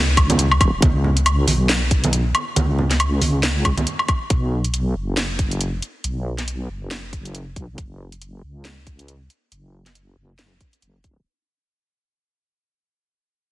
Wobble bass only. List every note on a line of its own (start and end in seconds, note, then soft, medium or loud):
0.00 0.59 C#2 loud
0.61 0.81 D#1 loud
0.82 1.46 C#2 loud
1.48 2.33 B1 loud
2.56 3.20 C#2 medium
3.22 3.85 C#2 loud
4.30 4.94 B1 medium
4.96 5.81 F#1 loud
6.04 6.68 B1 loud
6.69 7.55 F#1 loud
7.56 7.77 B1 loud
7.78 8.42 F#1 medium
8.43 9.29 C#2 loud
9.52 10.16 F#1 medium
10.17 10.59 F#1 loud
10.82 11.24 F#1 loud